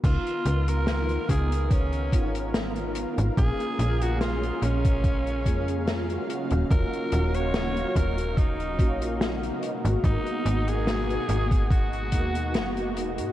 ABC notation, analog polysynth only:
X:1
M:4/4
L:1/16
Q:"Swing 16ths" 1/4=72
K:Dbmix
V:1 name="Analog polysynth"
[CEFB]3 [CEFB]3 [CEFB] z3 [CEFB]3 [CEFB]3 | [B,DFA]3 [B,DFA]3 [B,DFA] z3 [B,DFA]3 [B,DFG]3 | [B,DFG]3 [B,DFG]3 [B,DFG] z3 [B,DFG]3 [B,CEG]3 | [B,CEG]3 [B,CEG]3 [B,CEG] z3 [B,CEG]3 [B,CEG]3 |]